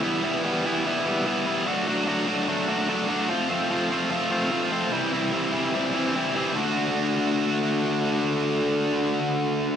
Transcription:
X:1
M:4/4
L:1/8
Q:1/4=147
K:Dmix
V:1 name="Distorted electric guitar"
[E,G,B,E] [E,G,B,E] [E,G,B,E] [E,G,B,E] [E,G,B,E] [E,G,B,E] [E,G,B,E] [E,G,B,E] | [F,A,DF] [F,A,DF] [F,A,DF] [F,A,DF] [F,A,DF] [F,A,DF] [F,A,DF] [F,A,DF] | [=F,A,C=F] [F,A,CF] [F,A,CF] [F,A,CF] [F,A,CF] [F,A,CF] [F,A,CF] [F,A,CF] | [C,E,G,CE] [C,E,G,CE] [C,E,G,CE] [C,E,G,CE] [C,E,G,CE] [C,E,G,CE] [C,E,G,CE] [C,E,G,CE] |
[D,A,DF]8- | [D,A,DF]8 |]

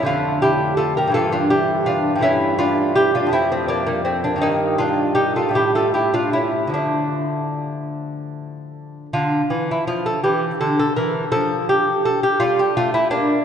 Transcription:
X:1
M:6/8
L:1/16
Q:3/8=55
K:Dm
V:1 name="Lute"
[DF]2 [EG]2 [FA] [GB] [FA] [DF] [EG]2 [DF]2 | [^CE]2 [DF]2 [EG] [DF] [=CE] [A,C] [B,D] [G,B,] [A,C] [B,D] | [B,_E]2 [DF]2 [EG] [FA] [=EG] [FA] [EG] [DF] [^CE]2 | [A,D]8- [A,D]2 z2 |
F3 E F A G2 A A B2 | A2 G2 A G F G F E D2 |]
V:2 name="Lute" clef=bass
[F,,D,A,]6 [G,,E,B,]6 | [G,,E,A,]6 [F,,F,A,]6 | [G,,_E,]6 [A,,G,A,]6 | [D,F,]12 |
D,2 E,2 F,2 E,2 D,2 E,2 | F,6 G,2 A,2 B,2 |]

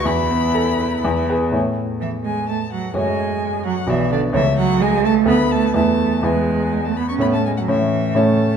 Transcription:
X:1
M:3/4
L:1/16
Q:1/4=127
K:A
V:1 name="Violin"
b8- b2 z2 | z4 e2 g2 a2 f2 | g6 f2 e2 d2 | e2 f2 g2 a2 b2 a2 |
a4 g4- g a b c' | b a g f e4 a4 |]
V:2 name="Grand piano"
E,,2 B,2 A2 B2 E,,2 [GB]2 | [A,,A,Ec]12 | [F,,A,Fc]8 [B,,,B,Fd]4 | [C,,A,Ac]8 [D,,B,AB]4 |
[E,,B,EB]4 [E,,B,EB]8 | [A,,A,Cc]4 [A,,A,Cc]4 [A,,A,Cc]4 |]
V:3 name="Cello" clef=bass
E8- E2 z2 | z4 E,2 G,2 A,2 F,2 | G,6 F,2 E,2 D,2 | E,2 F,2 G,2 A,2 B,2 A,2 |
A,4 G,4- G, A, B, C | B, A, G, F, E,4 A,4 |]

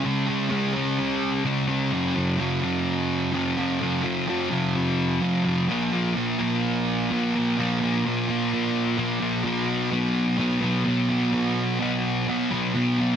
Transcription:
X:1
M:4/4
L:1/8
Q:1/4=128
K:Bmix
V:1 name="Distorted electric guitar" clef=bass
[C,G,C] [G,C] [C,G,C] [G,C]3 [C,G,C] [G,C] | [F,,C,F,] [C,F,] [F,,C,F,] [C,F,]3 [F,,C,F,] [C,F,] | [F,,C,F,] [C,F,] [F,,C,F,] [C,F,]3 [F,,C,F,] [C,F,] | [B,,F,B,] [F,B,] [B,,F,B,] [F,B,]3 [B,,F,B,] [F,B,] |
[B,,F,B,] [F,B,] [B,,F,B,] [F,B,]3 [B,,F,B,] [F,B,] | [B,,F,B,]2 [B,,F,B,]2 [B,,F,B,] [F,B,] [B,,F,B,] [F,B,] | [B,,F,B,]2 [B,,F,B,]2 [B,,F,B,] [F,B,] [B,,F,B,] [F,B,] |]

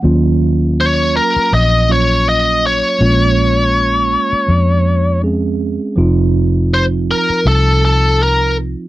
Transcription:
X:1
M:4/4
L:1/16
Q:"Swing 16ths" 1/4=81
K:Bbm
V:1 name="Lead electric guitar"
z4 d2 B2 e2 d2 e2 d2- | d12 z4 | z4 c2 B2 =A2 A2 B2 z2 |]
V:2 name="Tine electric piano"
[G,B,DF]8- [G,B,DF]2 [G,B,DF]6 | [A,B,DF]12 [A,CDA]4 | [F,CEF]16 |]
V:3 name="Fingered electric bass" clef=bass
E,,6- E,, z B,,,8 | B,,,6- B,,, z F,,8 | F,,,6- F,,, z C,,8 |]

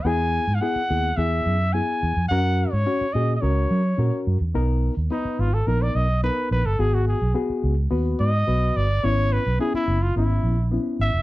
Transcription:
X:1
M:4/4
L:1/16
Q:1/4=107
K:B
V:1 name="Trumpet"
g3- g/2 ^e/2 f4 =e4 g4 | f3 c3 d3/2 d/2 c6 z2 | z4 D2 ^E =A ^A =d ^d2 B2 B =A | G F G2 z6 d4 =d2 |
c2 B2 G E2 ^E =E4 z2 e2 |]
V:2 name="Reed electric piano"
[B,EG]2 z2 [B,EG]2 [B,EG]2 [B,EG]2 z2 [B,EG]2 z2 | [CFA]2 z2 [CFc]2 [CFG]2 [CFA]2 z2 [CFA]2 z2 | [B,DA]2 z2 [B,DB]2 z2 [B,DA]2 z2 [B,DA]2 z2 | [B,FG]2 z2 [B,FG]2 z2 [B,FB]2 z2 [B,FB]2 z2 |
[B,CE]2 z2 [B,CE]2 z2 [B,CE]2 z2 [B,CE]2 z2 |]
V:3 name="Fingered electric bass" clef=bass
E,,3 G,, z2 D,,2 E,,2 F,,3 z E,, ^E,, | F,,3 G,, z2 A,,2 C,,2 F,2 A,, z F,, E,, | B,,,3 D,, z2 G,,,2 A,,,2 B,,,3 z A,,, =G,,, | G,,,3 B,,, z2 C,,2 D,,2 G,,2 B,,,2 =G,,,2 |
G,,,3 B,,, z2 F,,,2 G,,,2 A,,,3 z G,,, ^E,,, |]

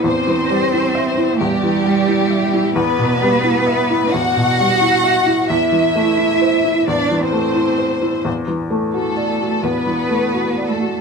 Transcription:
X:1
M:4/4
L:1/8
Q:1/4=87
K:Em
V:1 name="Violin section"
c4 G4 | B4 f4 | e4 d c3 | z2 A2 B3 A |]
V:2 name="Felt piano"
(3E,, E, G, (3E e E (3E,, E, G, (3E e E | (3E,, B,, G, (3E e E (3E,, B,, G, (3E e E | (3E,, E, A, (3E c E (3E,, E, A, (3E c E | (3E,, E, A, (3F d F (3E,, E, A, (3F d F |]
V:3 name="Cello"
C4 G,4 | B,4 F4 | E4 D C3 | z2 A,2 B,3 A, |]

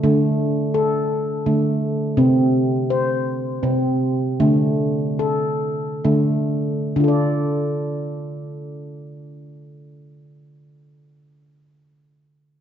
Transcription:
X:1
M:3/4
L:1/8
Q:"Swing 16ths" 1/4=71
K:Dm
V:1 name="Handpan"
A,2 A2 A,2 | C2 c2 C2 | A,2 A2 A,2 | z6 |
z6 |]
V:2 name="Handpan" clef=bass
D, z3 D,2 | C, z3 C,2 | D, z3 D,2 | [D,DFAd]6- |
[D,DFAd]6 |]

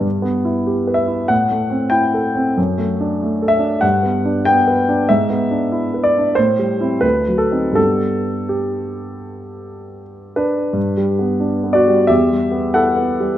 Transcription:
X:1
M:4/4
L:1/8
Q:1/4=91
K:G
V:1 name="Grand piano"
z3 e f2 g2 | z3 e f2 g2 | e3 d c2 B A | A2 G4 z [DB]- |
[DB]3 [Fd] [Ge]2 [Af]2 |]
V:2 name="Grand piano"
(3G,, B, E (3G B E (3A,, A, C (3E A C | (3F,, A, D (3A, A D (3G,, B, D (3B, B D | (3^G,, B, D (3E B D (3A,, =G, [CE] (3D,, F, [C_E] | [G,,G,B,D]8 |
(3G,, G, B, (3D B, G, (3E,, G, B, (3E B, G, |]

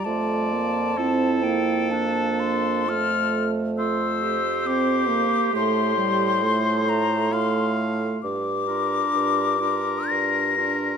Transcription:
X:1
M:3/4
L:1/8
Q:1/4=66
K:F
V:1 name="Flute"
a3 g a c' | f' z e'2 d'2 | c'3 b c' z | d'4 b'2 |]
V:2 name="Oboe"
d2 A4- | A z c4 | c4 f2 | z B2 B2 B |]
V:3 name="Clarinet"
F2 E2 D2 | F z F G3- | G2 F2 F2 | z F2 F2 F |]
V:4 name="French horn"
A, B, C B,3 | A,3 z C B, | A, G, A,2 A,2 | z D2 D2 D |]
V:5 name="Bassoon" clef=bass
F,,6- | F,,4- F,, z | A,,6 | G,,2 G,,2 G,,2 |]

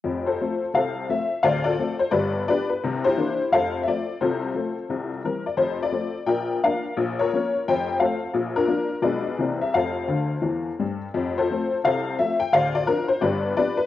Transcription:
X:1
M:4/4
L:1/16
Q:"Swing" 1/4=173
K:F
V:1 name="Honky-tonk piano"
z2 [FAc]6 [Acf]4 e4 | [cdf]2 [FAd]4 c2 [G=Bd]4 [GBd]2 B2 | z2 [EGc]6 [Acf]3 e d4 | [FAc]12 B2 d2 |
c2 d6 [Bdg]4 [Bdf]4 | z2 [FB_d]6 [cg]4 [Acf]4 | z2 [DFB]6 [^G=Bd]6 e2 | [Acf]12- [Acf]2 z2 |
z2 [FAc]6 [Acf]4 e2 g2 | [cdf]2 d2 B2 c2 [G=Bd]4 [GBd]2 B2 |]
V:2 name="Honky-tonk piano" clef=bass
[F,,,F,,]4 [F,A,C]4 [C,,C,]4 [F,A,C]4 | [D,,,D,,]4 [F,A,C]4 [G,,,G,,]4 [F,=B,D]4 | [C,,C,]4 [E,B,D]4 [F,,,F,,]4 [F,A,C]4 | [C,,C,]4 [F,A,C]4 [C,,C,]4 [E,G,C]4 |
[F,,,F,,]4 [F,A,C]4 [B,,,B,,]4 [F,B,D]4 | [B,,,B,,]4 [F,B,_D]4 [F,,,F,,]4 [F,A,C]4 | [B,,,B,,]4 [F,B,D]4 [=B,,,=B,,F,^G,D]4 [C,,C,E,_B,C]4 | [F,,,F,,]4 [D,,D,]4 [E,,E,]4 [G,,G,]4 |
[F,,,F,,]4 [F,A,C]4 [C,,C,]4 [F,A,C]4 | [D,,,D,,]4 [F,CD]4 [G,,,G,,]4 [F,=B,D]4 |]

